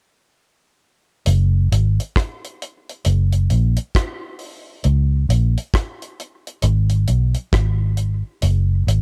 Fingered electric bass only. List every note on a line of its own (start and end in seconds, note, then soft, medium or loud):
1.27 1.69 F#1 loud
1.72 1.98 G#1 medium
3.06 3.48 F#1 loud
3.51 3.77 A#1 medium
4.85 5.27 C#2 loud
5.29 5.55 A#1 medium
6.63 7.05 G#1 loud
7.09 7.34 B1 medium
7.53 8.22 G#1 loud
8.43 8.84 F#1 loud
8.87 9.02 G#1 medium